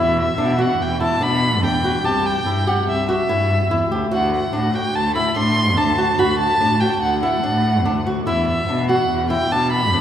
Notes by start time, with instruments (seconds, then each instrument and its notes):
Already playing: cello E2, nylon-string guitar E4
0.00 violin E5
0.20 violin E5
0.38 cello B2, nylon-string guitar D4
0.58 nylon-string guitar F#4, violin F#5
0.80 cello E2, violin G5
1.00 nylon-string guitar E4, violin A5
1.21 cello B2, nylon-string guitar D4, violin B5
1.62 cello E2, nylon-string guitar D4, violin G5
1.84 nylon-string guitar F#4
2.04 cello C2, nylon-string guitar G4, violin A5
2.26 violin G5
2.45 cello G2, nylon-string guitar E4
2.67 nylon-string guitar G4, violin F#5
2.87 cello C2, violin E5
3.09 nylon-string guitar F#4, violin E5
3.29 cello G2, nylon-string guitar E4
3.71 cello E2, nylon-string guitar E4
3.91 cello D2, nylon-string guitar G4
4.11 cello D2, nylon-string guitar F#4, violin F#5
4.34 violin F#5
4.53 cello A2, nylon-string guitar D4
4.74 nylon-string guitar F#4, violin G5
4.95 cello D2, violin A5
5.15 nylon-string guitar E4, violin B5
5.36 cello A2, nylon-string guitar D4, violin C6
5.77 cello D2, nylon-string guitar D4, violin A5
5.98 nylon-string guitar F#4
6.19 cello D2, nylon-string guitar F#4, violin B5
6.39 violin A5
6.61 cello A2, nylon-string guitar D4
6.81 nylon-string guitar F#4, violin G5
7.01 cello D2, violin F#5
7.23 nylon-string guitar E4, violin F#5
7.44 cello A2, nylon-string guitar D4
7.85 cello D2, nylon-string guitar D4
8.07 nylon-string guitar F#4
8.27 cello E2, nylon-string guitar E4, violin E5
8.48 violin E5
8.69 cello B2, nylon-string guitar D4
8.88 nylon-string guitar F#4, violin F#5
9.10 cello E2
9.30 nylon-string guitar E4, violin G5
9.51 cello B2, nylon-string guitar D4, violin A5
9.72 violin B5
9.93 cello E2, nylon-string guitar D4